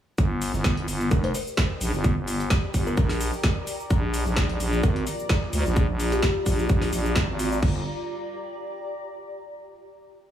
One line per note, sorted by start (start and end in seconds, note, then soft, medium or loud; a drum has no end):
0.18 0.52 G1 loud
0.18 5.40 G4 medium
0.18 kick loud
0.18 shaker medium
0.18 shaker soft
0.42 open hi-hat loud
0.42 shaker medium
0.54 0.75 G1 loud
0.54 snare soft
0.54 shaker soft
0.64 kick loud
0.64 snare loud
0.64 shaker medium
0.64 shaker soft
0.69 7.63 D5 medium
0.77 0.86 G1 loud
0.77 closed hi-hat soft
0.88 1.10 G1 medium
0.88 open hi-hat loud
0.88 shaker medium
1.01 snare soft
1.01 shaker soft
1.11 1.33 F1 loud
1.11 1.21 A#4 medium
1.11 kick loud
1.11 shaker medium
1.11 shaker soft
1.18 7.63 A#5 medium
1.24 1.31 C5 medium
1.24 closed hi-hat soft
1.34 1.43 C5 medium
1.34 open hi-hat loud
1.34 shaker medium
1.47 shaker soft
1.57 kick loud
1.57 snare loud
1.57 shaker medium
1.57 shaker soft
1.70 snare soft
1.81 1.92 A#1 loud
1.81 open hi-hat loud
1.81 shaker medium
1.94 2.15 G1 loud
1.94 snare medium
1.94 shaker soft
2.04 kick loud
2.04 shaker medium
2.04 shaker soft
2.17 2.49 G1 loud
2.28 open hi-hat loud
2.28 shaker medium
2.40 closed hi-hat soft
2.40 shaker soft
2.50 kick loud
2.50 snare loud
2.50 shaker medium
2.50 shaker soft
2.74 2.96 G1 medium
2.74 kick medium
2.74 open hi-hat loud
2.74 shaker medium
2.87 2.94 A#4 medium
2.87 shaker soft
2.97 3.31 A#1 loud
2.97 3.05 A#4 medium
2.97 kick loud
2.97 shaker medium
2.97 shaker soft
3.09 snare soft
3.09 open hi-hat medium
3.21 open hi-hat loud
3.21 shaker medium
3.33 shaker soft
3.44 kick loud
3.44 snare loud
3.44 shaker medium
3.44 shaker soft
3.67 open hi-hat loud
3.67 shaker medium
3.80 shaker soft
3.90 4.24 A#1 loud
3.90 7.59 A#3 medium
3.90 7.59 F4 medium
3.90 7.63 F4 medium
3.90 7.59 D5 loud
3.90 kick loud
3.90 shaker medium
3.90 shaker soft
4.14 open hi-hat loud
4.14 shaker medium
4.26 4.48 A#1 loud
4.26 snare soft
4.26 shaker soft
4.36 kick loud
4.36 snare loud
4.36 shaker medium
4.36 shaker soft
4.49 4.58 A#1 loud
4.49 closed hi-hat soft
4.60 4.82 A#1 loud
4.60 open hi-hat loud
4.60 shaker medium
4.73 snare medium
4.73 shaker soft
4.83 5.05 G#1 loud
4.83 4.93 A#4 medium
4.83 kick loud
4.83 shaker medium
4.83 shaker soft
4.96 closed hi-hat soft
5.07 open hi-hat loud
5.07 shaker medium
5.19 shaker soft
5.29 kick loud
5.29 snare loud
5.29 shaker soft
5.29 shaker medium
5.43 snare soft
5.53 5.64 D2 medium
5.53 open hi-hat loud
5.53 shaker medium
5.66 5.87 A#1 loud
5.66 snare medium
5.66 shaker soft
5.76 kick loud
5.76 shaker medium
5.76 shaker soft
5.89 6.21 A#1 medium
6.00 open hi-hat loud
6.00 shaker medium
6.12 6.19 G4 medium
6.12 closed hi-hat soft
6.12 shaker soft
6.23 6.31 G4 medium
6.23 kick loud
6.23 snare loud
6.23 shaker medium
6.23 shaker soft
6.46 6.68 A#1 loud
6.46 kick medium
6.46 open hi-hat loud
6.46 shaker medium
6.59 shaker soft
6.69 6.91 A#1 loud
6.69 kick loud
6.69 shaker medium
6.69 shaker soft
6.82 snare soft
6.82 open hi-hat medium
6.93 7.27 A#1 medium
6.93 open hi-hat loud
6.93 shaker medium
7.05 shaker soft
7.16 kick loud
7.16 snare loud
7.16 shaker medium
7.16 shaker soft
7.29 7.61 G#1 loud
7.39 open hi-hat loud
7.39 shaker medium
7.52 shaker soft
7.62 7.84 G1 loud
7.62 7.84 G3 medium
7.62 7.84 D4 medium
7.62 9.45 G4 medium
7.62 7.84 A#4 medium
7.62 kick loud
7.62 crash medium
7.70 9.45 D5 medium
7.77 9.45 A#5 medium